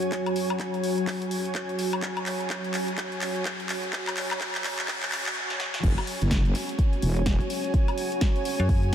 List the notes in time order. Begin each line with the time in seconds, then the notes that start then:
Already playing: F#3 F#4 C#5 G#5, riser
0.02 closed hi-hat
0.12 kick, clap, closed hi-hat
0.26 closed hi-hat, high woodblock
0.36 open hi-hat
0.50 high woodblock
0.60 kick, clap, closed hi-hat
0.74 closed hi-hat
0.84 open hi-hat
0.98 closed hi-hat
1.07 kick, clap, open hi-hat
1.22 closed hi-hat
1.31 open hi-hat
1.45 closed hi-hat
1.55 kick, clap, closed hi-hat
1.69 closed hi-hat
1.79 open hi-hat
1.93 high woodblock
2.02 kick, clap, closed hi-hat
2.17 closed hi-hat, high woodblock
2.26 clap, open hi-hat
2.41 closed hi-hat
2.50 kick, clap, closed hi-hat
2.64 closed hi-hat
2.74 clap, open hi-hat
2.88 closed hi-hat
2.98 kick, clap, closed hi-hat
3.12 closed hi-hat
3.22 clap, open hi-hat
3.36 closed hi-hat
3.45 kick, clap, closed hi-hat
3.60 closed hi-hat
3.69 clap, open hi-hat
3.83 closed hi-hat
3.93 kick, clap, closed hi-hat
4.07 clap, closed hi-hat, high woodblock
4.17 clap, open hi-hat
4.31 clap, high woodblock
4.41 kick, clap, closed hi-hat
4.55 clap, closed hi-hat
4.64 kick, clap, open hi-hat
4.79 clap
4.88 kick, clap, open hi-hat
5.03 clap, closed hi-hat
5.12 clap, open hi-hat
5.26 clap
5.50 snare
5.60 snare
5.74 snare
5.83 F#1 C#4 F#4 C#5, kick, closed hi-hat, crash
5.92 G#5
5.98 closed hi-hat, high woodblock
6.06 C#5, open hi-hat
6.21 F#1, closed hi-hat
6.31 kick, snare, closed hi-hat
6.45 closed hi-hat
6.55 open hi-hat
6.69 closed hi-hat
6.79 kick, closed hi-hat
6.93 closed hi-hat
7.02 E1, open hi-hat
7.17 closed hi-hat
7.26 kick, snare, closed hi-hat
7.40 closed hi-hat
7.50 open hi-hat
7.64 closed hi-hat
7.74 kick, closed hi-hat
7.88 closed hi-hat, high woodblock
7.98 open hi-hat
8.12 closed hi-hat
8.21 kick, snare, closed hi-hat
8.36 closed hi-hat
8.45 open hi-hat
8.60 F#2, closed hi-hat
8.69 kick, open hi-hat
8.83 closed hi-hat